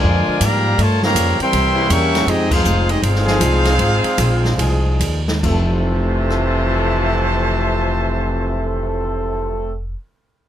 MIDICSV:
0, 0, Header, 1, 7, 480
1, 0, Start_track
1, 0, Tempo, 372208
1, 1006, Time_signature, 4, 2, 24, 8
1, 3888, Tempo, 391901
1, 5808, Tempo, 435098
1, 12322, End_track
2, 0, Start_track
2, 0, Title_t, "Trumpet section"
2, 0, Program_c, 0, 61
2, 0, Note_on_c, 0, 65, 83
2, 0, Note_on_c, 0, 70, 89
2, 0, Note_on_c, 0, 74, 85
2, 0, Note_on_c, 0, 80, 97
2, 551, Note_off_c, 0, 74, 0
2, 552, Note_off_c, 0, 70, 0
2, 553, Note_off_c, 0, 80, 0
2, 555, Note_off_c, 0, 65, 0
2, 568, Note_on_c, 0, 77, 88
2, 571, Note_on_c, 0, 67, 87
2, 572, Note_on_c, 0, 74, 90
2, 579, Note_on_c, 0, 82, 105
2, 1027, Note_off_c, 0, 77, 0
2, 1028, Note_off_c, 0, 67, 0
2, 1029, Note_off_c, 0, 74, 0
2, 1032, Note_off_c, 0, 82, 0
2, 1054, Note_on_c, 0, 70, 87
2, 1055, Note_on_c, 0, 65, 91
2, 1057, Note_on_c, 0, 73, 88
2, 1058, Note_on_c, 0, 81, 101
2, 1340, Note_off_c, 0, 65, 0
2, 1340, Note_off_c, 0, 70, 0
2, 1341, Note_off_c, 0, 73, 0
2, 1342, Note_off_c, 0, 81, 0
2, 1359, Note_on_c, 0, 67, 95
2, 1360, Note_on_c, 0, 73, 96
2, 1360, Note_on_c, 0, 77, 95
2, 1360, Note_on_c, 0, 82, 109
2, 1785, Note_off_c, 0, 67, 0
2, 1785, Note_off_c, 0, 73, 0
2, 1785, Note_off_c, 0, 77, 0
2, 1785, Note_off_c, 0, 82, 0
2, 1833, Note_on_c, 0, 79, 101
2, 1840, Note_on_c, 0, 84, 118
2, 1842, Note_on_c, 0, 70, 98
2, 1842, Note_on_c, 0, 76, 100
2, 2446, Note_off_c, 0, 70, 0
2, 2447, Note_off_c, 0, 76, 0
2, 2454, Note_off_c, 0, 79, 0
2, 2462, Note_on_c, 0, 70, 95
2, 2462, Note_on_c, 0, 76, 98
2, 2466, Note_off_c, 0, 84, 0
2, 2466, Note_on_c, 0, 85, 108
2, 2470, Note_on_c, 0, 79, 95
2, 2932, Note_off_c, 0, 70, 0
2, 2932, Note_off_c, 0, 76, 0
2, 2934, Note_off_c, 0, 85, 0
2, 2936, Note_off_c, 0, 79, 0
2, 2951, Note_on_c, 0, 60, 85
2, 2954, Note_on_c, 0, 67, 89
2, 2956, Note_on_c, 0, 68, 86
2, 2960, Note_on_c, 0, 75, 95
2, 3235, Note_off_c, 0, 68, 0
2, 3247, Note_off_c, 0, 60, 0
2, 3249, Note_off_c, 0, 67, 0
2, 3251, Note_off_c, 0, 75, 0
2, 3251, Note_on_c, 0, 68, 93
2, 3251, Note_on_c, 0, 72, 91
2, 3252, Note_on_c, 0, 63, 97
2, 3255, Note_on_c, 0, 77, 108
2, 3725, Note_off_c, 0, 63, 0
2, 3725, Note_off_c, 0, 68, 0
2, 3725, Note_off_c, 0, 72, 0
2, 3727, Note_off_c, 0, 77, 0
2, 3741, Note_on_c, 0, 60, 84
2, 3742, Note_on_c, 0, 75, 96
2, 3744, Note_on_c, 0, 67, 80
2, 3746, Note_on_c, 0, 68, 78
2, 3893, Note_off_c, 0, 68, 0
2, 3900, Note_off_c, 0, 60, 0
2, 3900, Note_off_c, 0, 75, 0
2, 3901, Note_off_c, 0, 67, 0
2, 3905, Note_on_c, 0, 72, 93
2, 3907, Note_on_c, 0, 68, 96
2, 3908, Note_on_c, 0, 77, 109
2, 3913, Note_on_c, 0, 63, 99
2, 6232, Note_off_c, 0, 72, 0
2, 6233, Note_off_c, 0, 68, 0
2, 6233, Note_off_c, 0, 77, 0
2, 6236, Note_off_c, 0, 63, 0
2, 6767, Note_on_c, 0, 72, 87
2, 6768, Note_on_c, 0, 65, 88
2, 6769, Note_on_c, 0, 81, 94
2, 6770, Note_on_c, 0, 76, 86
2, 11452, Note_off_c, 0, 72, 0
2, 11453, Note_off_c, 0, 65, 0
2, 11453, Note_off_c, 0, 81, 0
2, 11454, Note_off_c, 0, 76, 0
2, 12322, End_track
3, 0, Start_track
3, 0, Title_t, "Trombone section"
3, 0, Program_c, 1, 61
3, 50, Note_on_c, 1, 65, 104
3, 53, Note_on_c, 1, 62, 88
3, 54, Note_on_c, 1, 58, 89
3, 59, Note_on_c, 1, 53, 92
3, 776, Note_off_c, 1, 65, 0
3, 778, Note_off_c, 1, 58, 0
3, 778, Note_off_c, 1, 62, 0
3, 780, Note_off_c, 1, 53, 0
3, 2265, Note_on_c, 1, 48, 101
3, 2266, Note_on_c, 1, 49, 109
3, 2267, Note_on_c, 1, 64, 127
3, 2275, Note_on_c, 1, 58, 103
3, 2884, Note_off_c, 1, 48, 0
3, 2885, Note_off_c, 1, 49, 0
3, 2885, Note_off_c, 1, 64, 0
3, 2889, Note_off_c, 1, 58, 0
3, 4188, Note_on_c, 1, 63, 99
3, 4192, Note_on_c, 1, 68, 127
3, 4193, Note_on_c, 1, 53, 111
3, 4193, Note_on_c, 1, 56, 94
3, 4794, Note_off_c, 1, 63, 0
3, 4796, Note_off_c, 1, 68, 0
3, 4797, Note_off_c, 1, 53, 0
3, 4797, Note_off_c, 1, 56, 0
3, 5804, Note_on_c, 1, 68, 109
3, 5806, Note_on_c, 1, 63, 87
3, 5808, Note_on_c, 1, 53, 100
3, 5808, Note_on_c, 1, 56, 93
3, 6509, Note_off_c, 1, 68, 0
3, 6510, Note_off_c, 1, 63, 0
3, 6511, Note_off_c, 1, 53, 0
3, 6511, Note_off_c, 1, 56, 0
3, 6742, Note_on_c, 1, 69, 92
3, 6743, Note_on_c, 1, 60, 80
3, 6744, Note_on_c, 1, 57, 92
3, 11484, Note_off_c, 1, 60, 0
3, 11484, Note_off_c, 1, 69, 0
3, 11485, Note_off_c, 1, 57, 0
3, 12322, End_track
4, 0, Start_track
4, 0, Title_t, "Trombone section"
4, 0, Program_c, 2, 61
4, 0, Note_on_c, 2, 50, 92
4, 0, Note_on_c, 2, 53, 90
4, 0, Note_on_c, 2, 56, 88
4, 525, Note_off_c, 2, 53, 0
4, 538, Note_off_c, 2, 50, 0
4, 540, Note_on_c, 2, 53, 85
4, 541, Note_off_c, 2, 56, 0
4, 543, Note_on_c, 2, 58, 88
4, 544, Note_on_c, 2, 55, 89
4, 1010, Note_on_c, 2, 57, 94
4, 1013, Note_off_c, 2, 53, 0
4, 1014, Note_off_c, 2, 58, 0
4, 1015, Note_off_c, 2, 55, 0
4, 1318, Note_off_c, 2, 57, 0
4, 1318, Note_on_c, 2, 58, 93
4, 1323, Note_on_c, 2, 53, 90
4, 1328, Note_on_c, 2, 49, 89
4, 1763, Note_off_c, 2, 58, 0
4, 1765, Note_off_c, 2, 53, 0
4, 1768, Note_off_c, 2, 49, 0
4, 1816, Note_on_c, 2, 52, 103
4, 1818, Note_on_c, 2, 60, 103
4, 1823, Note_on_c, 2, 55, 106
4, 2428, Note_off_c, 2, 55, 0
4, 2444, Note_on_c, 2, 55, 103
4, 2444, Note_on_c, 2, 58, 93
4, 2445, Note_on_c, 2, 61, 94
4, 2454, Note_off_c, 2, 52, 0
4, 2455, Note_off_c, 2, 60, 0
4, 2923, Note_off_c, 2, 55, 0
4, 2923, Note_off_c, 2, 58, 0
4, 2923, Note_off_c, 2, 61, 0
4, 2928, Note_on_c, 2, 60, 92
4, 2929, Note_on_c, 2, 63, 87
4, 2931, Note_on_c, 2, 56, 94
4, 3236, Note_off_c, 2, 60, 0
4, 3236, Note_off_c, 2, 63, 0
4, 3237, Note_off_c, 2, 56, 0
4, 3254, Note_on_c, 2, 65, 89
4, 3255, Note_on_c, 2, 56, 85
4, 3261, Note_on_c, 2, 60, 82
4, 3721, Note_off_c, 2, 60, 0
4, 3722, Note_off_c, 2, 56, 0
4, 3726, Note_off_c, 2, 65, 0
4, 3737, Note_on_c, 2, 60, 85
4, 3738, Note_on_c, 2, 56, 81
4, 3740, Note_on_c, 2, 63, 83
4, 3898, Note_off_c, 2, 56, 0
4, 3898, Note_off_c, 2, 60, 0
4, 3899, Note_off_c, 2, 63, 0
4, 3915, Note_on_c, 2, 56, 85
4, 3915, Note_on_c, 2, 65, 81
4, 3916, Note_on_c, 2, 60, 86
4, 6236, Note_off_c, 2, 56, 0
4, 6236, Note_off_c, 2, 65, 0
4, 6237, Note_off_c, 2, 60, 0
4, 6741, Note_on_c, 2, 41, 110
4, 6741, Note_on_c, 2, 48, 104
4, 6745, Note_on_c, 2, 52, 106
4, 6745, Note_on_c, 2, 57, 102
4, 11439, Note_off_c, 2, 41, 0
4, 11439, Note_off_c, 2, 48, 0
4, 11441, Note_off_c, 2, 52, 0
4, 11441, Note_off_c, 2, 57, 0
4, 12322, End_track
5, 0, Start_track
5, 0, Title_t, "Upright bass"
5, 0, Program_c, 3, 32
5, 49, Note_on_c, 3, 41, 87
5, 336, Note_off_c, 3, 41, 0
5, 523, Note_on_c, 3, 44, 96
5, 990, Note_off_c, 3, 44, 0
5, 1006, Note_on_c, 3, 43, 91
5, 1471, Note_off_c, 3, 43, 0
5, 1484, Note_on_c, 3, 41, 97
5, 1773, Note_off_c, 3, 41, 0
5, 1971, Note_on_c, 3, 36, 91
5, 2433, Note_off_c, 3, 36, 0
5, 2446, Note_on_c, 3, 40, 107
5, 2910, Note_off_c, 3, 40, 0
5, 2921, Note_on_c, 3, 41, 98
5, 3388, Note_off_c, 3, 41, 0
5, 3402, Note_on_c, 3, 29, 95
5, 3873, Note_off_c, 3, 29, 0
5, 3899, Note_on_c, 3, 31, 85
5, 4346, Note_off_c, 3, 31, 0
5, 4362, Note_on_c, 3, 36, 105
5, 4818, Note_off_c, 3, 36, 0
5, 4830, Note_on_c, 3, 32, 95
5, 5119, Note_off_c, 3, 32, 0
5, 5313, Note_on_c, 3, 34, 107
5, 5794, Note_off_c, 3, 34, 0
5, 5803, Note_on_c, 3, 36, 91
5, 6252, Note_off_c, 3, 36, 0
5, 6262, Note_on_c, 3, 39, 89
5, 6725, Note_off_c, 3, 39, 0
5, 6744, Note_on_c, 3, 29, 99
5, 11709, Note_off_c, 3, 29, 0
5, 12322, End_track
6, 0, Start_track
6, 0, Title_t, "Muted upright bass strokes"
6, 363, Note_on_c, 9, 29, 42
6, 492, Note_off_c, 9, 29, 0
6, 1798, Note_on_c, 9, 29, 40
6, 1927, Note_off_c, 9, 29, 0
6, 5137, Note_on_c, 9, 29, 43
6, 5259, Note_off_c, 9, 29, 0
6, 12322, End_track
7, 0, Start_track
7, 0, Title_t, "Drums"
7, 525, Note_on_c, 9, 44, 60
7, 525, Note_on_c, 9, 51, 79
7, 654, Note_off_c, 9, 44, 0
7, 654, Note_off_c, 9, 51, 0
7, 1016, Note_on_c, 9, 51, 72
7, 1145, Note_off_c, 9, 51, 0
7, 1325, Note_on_c, 9, 38, 59
7, 1454, Note_off_c, 9, 38, 0
7, 1493, Note_on_c, 9, 44, 72
7, 1493, Note_on_c, 9, 51, 89
7, 1622, Note_off_c, 9, 44, 0
7, 1622, Note_off_c, 9, 51, 0
7, 1806, Note_on_c, 9, 51, 56
7, 1935, Note_off_c, 9, 51, 0
7, 1973, Note_on_c, 9, 51, 80
7, 2102, Note_off_c, 9, 51, 0
7, 2453, Note_on_c, 9, 44, 57
7, 2453, Note_on_c, 9, 51, 87
7, 2582, Note_off_c, 9, 44, 0
7, 2582, Note_off_c, 9, 51, 0
7, 2772, Note_on_c, 9, 38, 44
7, 2772, Note_on_c, 9, 51, 54
7, 2901, Note_off_c, 9, 38, 0
7, 2901, Note_off_c, 9, 51, 0
7, 2941, Note_on_c, 9, 51, 75
7, 3070, Note_off_c, 9, 51, 0
7, 3239, Note_on_c, 9, 36, 97
7, 3242, Note_on_c, 9, 49, 94
7, 3368, Note_off_c, 9, 36, 0
7, 3371, Note_off_c, 9, 49, 0
7, 3416, Note_on_c, 9, 44, 69
7, 3545, Note_off_c, 9, 44, 0
7, 3729, Note_on_c, 9, 51, 55
7, 3858, Note_off_c, 9, 51, 0
7, 3911, Note_on_c, 9, 51, 80
7, 4033, Note_off_c, 9, 51, 0
7, 4058, Note_on_c, 9, 38, 33
7, 4180, Note_off_c, 9, 38, 0
7, 4208, Note_on_c, 9, 38, 55
7, 4331, Note_off_c, 9, 38, 0
7, 4369, Note_on_c, 9, 44, 61
7, 4369, Note_on_c, 9, 51, 85
7, 4491, Note_off_c, 9, 44, 0
7, 4491, Note_off_c, 9, 51, 0
7, 4670, Note_on_c, 9, 38, 47
7, 4670, Note_on_c, 9, 51, 55
7, 4792, Note_off_c, 9, 38, 0
7, 4792, Note_off_c, 9, 51, 0
7, 4837, Note_on_c, 9, 51, 71
7, 4960, Note_off_c, 9, 51, 0
7, 5145, Note_on_c, 9, 51, 56
7, 5268, Note_off_c, 9, 51, 0
7, 5315, Note_on_c, 9, 44, 60
7, 5315, Note_on_c, 9, 51, 91
7, 5437, Note_off_c, 9, 44, 0
7, 5437, Note_off_c, 9, 51, 0
7, 5642, Note_on_c, 9, 38, 44
7, 5764, Note_off_c, 9, 38, 0
7, 5817, Note_on_c, 9, 51, 73
7, 5927, Note_off_c, 9, 51, 0
7, 6274, Note_on_c, 9, 44, 56
7, 6274, Note_on_c, 9, 51, 76
7, 6385, Note_off_c, 9, 44, 0
7, 6385, Note_off_c, 9, 51, 0
7, 6576, Note_on_c, 9, 38, 58
7, 6687, Note_off_c, 9, 38, 0
7, 6745, Note_on_c, 9, 36, 60
7, 6750, Note_on_c, 9, 49, 67
7, 6855, Note_off_c, 9, 36, 0
7, 6860, Note_off_c, 9, 49, 0
7, 7706, Note_on_c, 9, 37, 64
7, 7817, Note_off_c, 9, 37, 0
7, 12322, End_track
0, 0, End_of_file